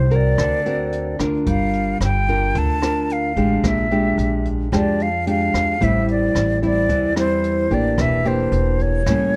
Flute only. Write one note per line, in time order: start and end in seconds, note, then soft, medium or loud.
0.00 0.17 C5 medium
0.16 1.22 D5 medium
1.49 1.98 F5 medium
2.03 2.60 G5 medium
2.58 3.14 A5 loud
3.12 3.69 F5 medium
3.68 4.47 E5 medium
4.75 5.04 D5 medium
5.02 5.28 F5 loud
5.29 5.85 F5 loud
5.84 6.09 E5 medium
6.11 6.60 D5 medium
6.65 7.14 D5 medium
7.19 7.76 C5 medium
7.74 8.02 D5 medium
8.01 8.29 E5 medium
8.27 8.83 C5 medium
8.82 9.36 C#5 medium